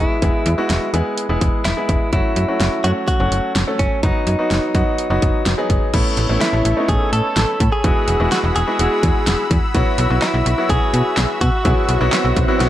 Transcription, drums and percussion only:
0.22 kick loud
0.22 closed hi-hat medium
0.46 closed hi-hat medium
0.70 snare loud
0.70 closed hi-hat medium
0.94 closed hi-hat medium
1.18 closed hi-hat medium
1.41 kick medium
1.41 closed hi-hat medium
1.65 snare loud
1.65 closed hi-hat medium
1.89 kick medium
1.89 closed hi-hat medium
2.13 kick loud
2.13 closed hi-hat medium
2.36 closed hi-hat medium
2.60 snare loud
2.60 closed hi-hat medium
2.84 closed hi-hat medium
3.08 kick loud
3.08 closed hi-hat medium
3.32 closed hi-hat medium
3.55 snare loud
3.55 closed hi-hat medium
3.79 kick medium
3.79 closed hi-hat medium
4.03 kick loud
4.03 closed hi-hat medium
4.27 closed hi-hat medium
4.51 snare loud
4.51 closed hi-hat medium
4.75 kick medium
4.75 closed hi-hat medium
4.98 closed hi-hat medium
5.22 kick medium
5.22 closed hi-hat medium
5.46 snare loud
5.46 closed hi-hat medium
5.70 kick medium
5.70 closed hi-hat medium
5.94 kick loud
5.94 closed hi-hat medium
5.94 crash medium
6.17 closed hi-hat medium
6.41 snare loud
6.41 closed hi-hat medium
6.65 closed hi-hat medium
6.89 kick loud
6.89 closed hi-hat medium
7.13 closed hi-hat medium
7.36 snare loud
7.36 closed hi-hat medium
7.60 kick medium
7.60 closed hi-hat medium
7.84 kick loud
7.84 closed hi-hat medium
8.08 closed hi-hat medium
8.32 snare loud
8.32 closed hi-hat medium
8.56 closed hi-hat medium
8.79 closed hi-hat medium
9.03 kick medium
9.03 closed hi-hat medium
9.27 snare loud
9.27 closed hi-hat medium
9.51 kick medium
9.51 closed hi-hat medium
9.75 kick loud
9.75 closed hi-hat medium
9.98 closed hi-hat medium
10.22 snare loud
10.22 clap medium
10.22 closed hi-hat medium
10.46 closed hi-hat medium
10.69 kick loud
10.69 closed hi-hat medium
10.94 closed hi-hat medium
11.17 snare loud
11.17 clap loud
11.17 closed hi-hat medium
11.41 kick medium
11.41 closed hi-hat medium
11.65 kick loud
11.65 closed hi-hat medium
11.89 closed hi-hat medium
12.13 snare loud
12.13 clap medium
12.13 closed hi-hat medium
12.36 kick medium
12.36 closed hi-hat medium
12.60 snare medium
12.60 closed hi-hat medium

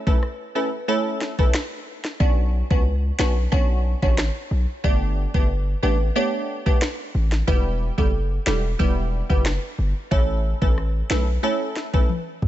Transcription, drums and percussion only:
0.07 kick loud
0.23 cross-stick medium
1.21 snare medium
1.39 kick medium
1.54 finger snap medium
1.54 cross-stick medium
1.54 snare loud
2.05 snare medium
2.20 kick loud
2.71 kick medium
3.19 finger snap medium
3.19 snare loud
3.52 kick medium
4.03 kick medium
4.18 finger snap medium
4.18 cross-stick medium
4.18 snare loud
4.84 kick loud
5.34 kick loud
6.66 kick medium
6.82 finger snap medium
6.82 cross-stick medium
6.82 snare loud
7.32 snare medium
7.48 kick loud
7.98 kick loud
8.47 finger snap medium
8.47 snare loud
8.80 kick medium
9.30 kick medium
9.46 finger snap medium
9.46 cross-stick medium
9.46 snare loud
10.12 kick loud
10.62 kick loud
10.78 cross-stick medium
11.11 finger snap medium
11.11 snare loud
11.76 snare medium
11.94 kick medium
12.09 high tom medium
12.42 mid tom medium

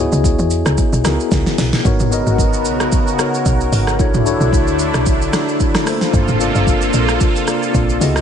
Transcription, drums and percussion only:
0.12 shaker medium
0.24 kick loud
0.24 shaker medium
0.39 shaker medium
0.51 shaker medium
0.66 cross-stick medium
0.66 shaker medium
0.78 kick loud
0.78 shaker medium
0.93 shaker medium
1.05 cross-stick loud
1.05 snare medium
1.05 shaker loud
1.20 shaker medium
1.31 kick loud
1.31 snare medium
1.31 shaker medium
1.46 snare medium
1.46 shaker medium
1.58 snare loud
1.58 open hi-hat medium
1.58 shaker medium
1.73 snare loud
1.73 shaker soft
1.85 kick loud
1.85 shaker medium
2.00 mid tom loud
2.00 shaker medium
2.12 shaker medium
2.27 shaker medium
2.38 kick medium
2.38 shaker medium
2.53 shaker medium
2.65 shaker medium
2.80 cross-stick medium
2.80 shaker medium
2.92 kick loud
2.92 shaker medium
3.07 shaker medium
3.19 cross-stick loud
3.19 shaker loud
3.34 shaker medium
3.46 kick loud
3.46 shaker medium
3.61 shaker medium
3.73 open hi-hat medium
3.73 shaker medium
3.87 cross-stick medium
3.87 shaker soft
3.99 kick loud
3.99 shaker medium
4.14 mid tom loud
4.14 shaker medium
4.26 shaker medium
4.41 shaker medium
4.53 kick loud
4.53 shaker medium
4.67 shaker medium
4.79 shaker medium
4.94 cross-stick medium
4.94 shaker medium
5.06 kick loud
5.06 shaker medium
5.22 shaker medium
5.33 cross-stick loud
5.33 snare medium
5.33 shaker loud
5.49 shaker medium
5.60 kick loud
5.60 shaker medium
5.75 cross-stick loud
5.75 snare medium
5.75 shaker medium
5.87 cross-stick loud
5.87 open hi-hat medium
5.87 shaker medium
6.01 snare medium
6.01 shaker medium
6.14 kick loud
6.14 shaker medium
6.28 mid tom loud
6.28 shaker medium
6.40 shaker medium
6.55 shaker medium
6.67 kick loud
6.67 shaker medium
6.82 shaker medium
6.93 shaker medium
7.09 cross-stick medium
7.09 shaker medium
7.21 kick loud
7.21 shaker medium
7.36 shaker medium
7.48 cross-stick loud
7.48 shaker loud
7.63 shaker medium
7.74 kick medium
7.74 shaker medium
7.89 shaker medium
8.01 open hi-hat medium
8.01 shaker medium
8.16 cross-stick medium
8.16 shaker soft

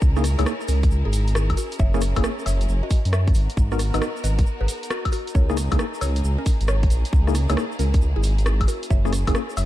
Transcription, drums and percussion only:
0.02 kick loud
0.02 shaker medium
0.16 cross-stick medium
0.16 shaker soft
0.24 cross-stick medium
0.24 open hi-hat loud
0.24 shaker loud
0.39 cross-stick medium
0.39 closed hi-hat medium
0.39 high woodblock medium
0.39 shaker soft
0.46 cross-stick loud
0.46 shaker medium
0.61 shaker soft
0.68 open hi-hat loud
0.68 shaker loud
0.83 kick loud
0.83 closed hi-hat medium
0.83 shaker soft
0.91 shaker medium
1.13 open hi-hat loud
1.13 shaker medium
1.28 closed hi-hat medium
1.28 shaker soft
1.35 cross-stick loud
1.35 shaker medium
1.50 kick medium
1.50 closed hi-hat soft
1.50 high woodblock medium
1.57 open hi-hat loud
1.57 shaker loud
1.72 closed hi-hat medium
1.72 shaker soft
1.79 kick loud
1.79 shaker medium
1.94 cross-stick medium
1.94 shaker soft
2.01 cross-stick medium
2.01 open hi-hat loud
2.01 shaker loud
2.16 kick medium
2.16 cross-stick medium
2.16 closed hi-hat medium
2.16 high woodblock medium
2.16 shaker soft
2.24 cross-stick loud
2.24 shaker medium
2.39 shaker soft
2.46 open hi-hat loud
2.46 high woodblock medium
2.46 shaker loud
2.61 closed hi-hat medium
2.61 shaker soft
2.69 shaker medium
2.91 kick loud
2.91 open hi-hat loud
2.91 shaker loud
3.05 closed hi-hat medium
3.05 shaker soft
3.13 cross-stick loud
3.13 shaker medium
3.27 kick loud
3.27 closed hi-hat soft
3.34 open hi-hat loud
3.34 shaker loud
3.50 closed hi-hat medium
3.50 shaker soft
3.57 kick loud
3.57 shaker medium
3.72 cross-stick medium
3.72 shaker soft
3.79 cross-stick medium
3.79 open hi-hat loud
3.79 shaker medium
3.94 cross-stick medium
3.94 closed hi-hat medium
3.94 high woodblock medium
3.94 shaker soft
4.02 cross-stick loud
4.02 shaker soft
4.17 shaker soft
4.24 open hi-hat loud
4.24 shaker loud
4.39 kick loud
4.39 closed hi-hat medium
4.39 shaker soft
4.46 shaker medium
4.68 open hi-hat loud
4.68 shaker loud
4.83 closed hi-hat medium
4.83 shaker soft
4.90 cross-stick loud
4.90 shaker medium
5.05 kick medium
5.05 closed hi-hat soft
5.05 high woodblock medium
5.12 open hi-hat medium
5.12 shaker medium
5.27 closed hi-hat medium
5.27 shaker soft
5.35 kick loud
5.35 shaker medium
5.50 cross-stick medium
5.50 shaker soft
5.57 cross-stick medium
5.57 open hi-hat loud
5.57 shaker loud
5.72 kick medium
5.72 cross-stick medium
5.72 closed hi-hat medium
5.72 high woodblock medium
5.72 shaker soft
5.79 cross-stick loud
5.79 shaker medium
5.94 shaker soft
6.01 open hi-hat loud
6.01 high woodblock medium
6.01 shaker medium
6.16 closed hi-hat medium
6.16 shaker soft
6.24 shaker medium
6.46 kick loud
6.46 open hi-hat loud
6.46 shaker medium
6.61 closed hi-hat medium
6.61 shaker soft
6.68 cross-stick loud
6.68 shaker medium
6.83 kick loud
6.83 closed hi-hat medium
6.90 open hi-hat loud
6.90 shaker medium
7.05 closed hi-hat medium
7.05 shaker soft
7.13 kick loud
7.13 shaker soft
7.27 cross-stick medium
7.27 shaker soft
7.35 cross-stick medium
7.35 open hi-hat loud
7.35 shaker medium
7.49 cross-stick medium
7.49 closed hi-hat medium
7.49 high woodblock medium
7.49 shaker soft
7.57 cross-stick loud
7.57 shaker soft
7.72 shaker soft
7.79 open hi-hat loud
7.79 shaker medium
7.94 kick loud
7.94 closed hi-hat medium
7.94 shaker soft
8.01 shaker medium
8.23 open hi-hat loud
8.23 shaker medium
8.38 closed hi-hat medium
8.38 shaker soft
8.46 cross-stick loud
8.46 shaker medium
8.61 kick medium
8.61 closed hi-hat medium
8.61 high woodblock medium
8.68 open hi-hat loud
8.68 shaker loud
8.83 closed hi-hat medium
8.83 shaker soft
8.90 kick loud
8.90 shaker medium
9.05 cross-stick medium
9.05 shaker soft
9.13 cross-stick medium
9.13 open hi-hat loud
9.13 shaker medium
9.27 kick medium
9.27 cross-stick medium
9.27 closed hi-hat medium
9.27 high woodblock medium
9.27 shaker soft
9.35 cross-stick loud
9.35 shaker soft
9.50 shaker soft
9.57 open hi-hat loud
9.57 high woodblock medium
9.57 shaker loud

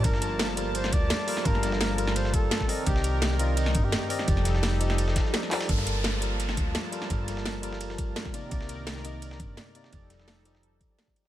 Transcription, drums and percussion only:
0.04 kick loud
0.04 closed hi-hat medium
0.04 ride medium
0.14 snare medium
0.22 closed hi-hat medium
0.22 ride medium
0.39 snare loud
0.39 closed hi-hat medium
0.39 ride medium
0.49 snare soft
0.57 closed hi-hat loud
0.57 ride medium
0.75 closed hi-hat medium
0.75 ride medium
0.84 snare medium
0.84 snare soft
0.92 kick loud
0.92 closed hi-hat medium
0.92 ride medium
1.10 snare loud
1.10 closed hi-hat medium
1.10 ride medium
1.28 open hi-hat medium
1.28 ride medium
1.37 snare medium
1.37 snare soft
1.45 kick loud
1.45 closed hi-hat medium
1.45 ride medium
1.55 snare soft
1.63 snare medium
1.63 closed hi-hat medium
1.63 ride medium
1.72 snare medium
1.81 snare loud
1.81 closed hi-hat medium
1.81 open hi-hat medium
1.98 closed hi-hat medium
1.98 ride medium
2.07 snare soft
2.07 snare medium
2.16 closed hi-hat medium
2.16 ride medium
2.25 snare medium
2.34 kick loud
2.34 closed hi-hat medium
2.34 ride medium
2.51 snare loud
2.51 closed hi-hat medium
2.51 ride medium
2.60 kick medium
2.60 snare medium
2.60 snare soft
2.69 open hi-hat medium
2.69 ride medium
2.86 kick loud
2.86 closed hi-hat medium
2.86 ride medium
2.96 snare medium
3.04 closed hi-hat medium
3.04 ride medium
3.22 snare loud
3.22 closed hi-hat medium
3.22 ride medium
3.31 snare soft
3.39 closed hi-hat loud
3.39 ride medium
3.57 closed hi-hat medium
3.57 ride medium
3.66 snare medium
3.66 snare soft
3.75 kick loud
3.75 closed hi-hat loud
3.75 ride medium
3.92 snare loud
3.92 closed hi-hat medium
3.92 ride medium
4.10 open hi-hat medium
4.10 ride medium
4.19 snare medium
4.19 snare soft
4.28 kick loud
4.28 closed hi-hat medium
4.28 ride medium
4.37 snare soft
4.45 snare medium
4.45 closed hi-hat loud
4.45 ride medium
4.55 snare medium
4.63 snare loud
4.63 closed hi-hat medium
4.63 open hi-hat medium
4.81 closed hi-hat loud
4.81 ride medium
4.90 snare medium
4.98 closed hi-hat medium
4.98 ride medium
5.08 snare soft
5.16 kick loud
5.16 snare loud
5.16 closed hi-hat loud
5.16 ride medium
5.25 snare soft
5.34 snare loud
5.34 closed hi-hat medium
5.34 ride medium
5.43 snare soft
5.51 snare loud
5.51 clap loud
5.51 open hi-hat medium
5.51 ride medium
5.61 snare loud
5.61 ride medium
5.69 kick loud
5.69 closed hi-hat medium
5.69 ride medium
5.78 snare medium
5.87 closed hi-hat medium
5.87 ride medium
6.04 snare loud
6.04 closed hi-hat medium
6.04 ride medium
6.14 snare soft
6.22 closed hi-hat medium
6.22 ride medium
6.40 closed hi-hat medium
6.40 ride medium
6.49 snare medium
6.49 snare soft
6.57 kick loud
6.57 closed hi-hat loud
6.57 ride medium
6.75 snare loud
6.75 closed hi-hat medium
6.75 ride medium
6.93 closed hi-hat loud
6.93 ride medium
7.02 snare medium
7.02 snare soft
7.10 kick loud
7.10 closed hi-hat medium
7.10 ride medium
7.28 snare soft
7.28 closed hi-hat medium
7.28 ride medium
7.37 snare medium
7.46 snare loud
7.46 closed hi-hat medium
7.46 open hi-hat medium
7.63 closed hi-hat medium
7.63 ride medium
7.72 snare soft
7.81 closed hi-hat medium
7.81 ride medium
7.90 snare soft
7.98 kick loud
7.98 closed hi-hat medium
7.98 ride medium
8.16 snare loud
8.16 closed hi-hat medium
8.16 ride medium
8.25 kick medium
8.25 snare soft
8.34 closed hi-hat medium
8.34 ride medium
8.51 kick loud
8.51 closed hi-hat medium
8.51 ride medium
8.61 snare medium
8.69 closed hi-hat medium
8.69 ride medium
8.87 snare loud
8.87 closed hi-hat medium
8.87 ride medium
8.96 snare soft
9.05 closed hi-hat medium
9.05 ride medium
9.22 closed hi-hat medium
9.22 ride medium
9.31 snare medium
9.40 kick loud
9.40 closed hi-hat medium
9.40 ride medium
9.57 snare loud
9.57 closed hi-hat medium
9.57 ride medium
9.75 closed hi-hat medium
9.75 ride medium
9.84 snare soft
9.93 kick loud
9.93 closed hi-hat medium
9.93 ride medium
10.10 snare soft
10.10 closed hi-hat medium
10.10 ride medium
10.19 snare soft
10.28 snare loud
10.28 closed hi-hat medium
10.28 open hi-hat medium
10.45 closed hi-hat medium
10.45 ride medium
10.55 snare soft
10.63 closed hi-hat medium
10.81 kick loud
10.81 closed hi-hat medium
10.81 ride medium
10.99 snare loud
10.99 closed hi-hat medium
10.99 ride medium
11.07 kick medium
11.07 snare soft
11.16 closed hi-hat medium
11.16 ride medium

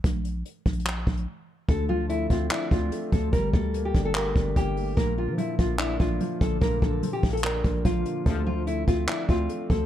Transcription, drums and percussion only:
0.04 kick loud
0.04 closed hi-hat medium
0.25 closed hi-hat medium
0.45 closed hi-hat medium
0.66 kick medium
0.66 closed hi-hat medium
0.73 closed hi-hat medium
0.80 closed hi-hat medium
0.86 clap loud
0.86 closed hi-hat medium
1.07 kick loud
1.07 closed hi-hat soft
1.17 closed hi-hat soft
1.69 kick loud
1.69 closed hi-hat medium
2.10 closed hi-hat medium
2.30 kick medium
2.30 closed hi-hat medium
2.51 clap loud
2.51 closed hi-hat medium
2.71 kick loud
2.71 closed hi-hat medium
2.92 closed hi-hat medium
3.12 kick loud
3.12 closed hi-hat medium
3.33 kick loud
3.33 closed hi-hat medium
3.53 kick loud
3.74 closed hi-hat medium
3.95 kick medium
3.95 closed hi-hat medium
4.15 clap loud
4.15 closed hi-hat medium
4.36 kick loud
4.36 closed hi-hat medium
4.56 kick loud
4.56 closed hi-hat medium
4.77 open hi-hat medium
4.97 kick loud
4.97 closed hi-hat medium
5.38 closed hi-hat medium
5.59 kick medium
5.59 closed hi-hat medium
5.79 clap loud
5.79 closed hi-hat medium
6.00 kick loud
6.00 closed hi-hat medium
6.21 closed hi-hat medium
6.41 kick loud
6.41 closed hi-hat medium
6.62 kick loud
6.62 closed hi-hat medium
6.82 kick loud
7.03 closed hi-hat medium
7.23 kick medium
7.23 closed hi-hat soft
7.23 open hi-hat medium
7.30 closed hi-hat medium
7.37 closed hi-hat medium
7.44 clap loud
7.44 closed hi-hat medium
7.64 kick loud
7.64 closed hi-hat medium
7.85 kick loud
7.85 closed hi-hat medium
8.06 closed hi-hat medium
8.26 kick loud
8.26 closed hi-hat medium
8.67 closed hi-hat medium
8.88 kick medium
8.88 closed hi-hat medium
9.08 clap loud
9.08 closed hi-hat medium
9.29 kick loud
9.29 closed hi-hat medium
9.49 closed hi-hat medium
9.70 kick loud
9.70 closed hi-hat medium

